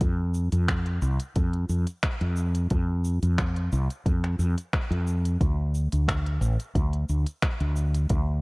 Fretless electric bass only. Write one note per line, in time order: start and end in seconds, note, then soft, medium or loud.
0.01 0.48 F2 medium
0.52 0.98 F2 medium
1.02 1.17 C2 loud
1.36 1.64 F2 medium
1.69 1.85 F2 medium
2.21 2.67 F2 medium
2.71 3.18 F2 medium
3.23 3.68 F2 medium
3.73 3.87 C2 loud
4.06 4.34 F2 medium
4.39 4.54 F2 medium
4.90 5.36 F2 loud
5.41 5.88 D2 loud
5.93 6.38 D2 medium
6.41 6.56 A1 loud
6.75 7.04 D2 medium
7.09 7.24 D2 medium
7.61 8.06 D2 loud
8.10 8.41 D2 medium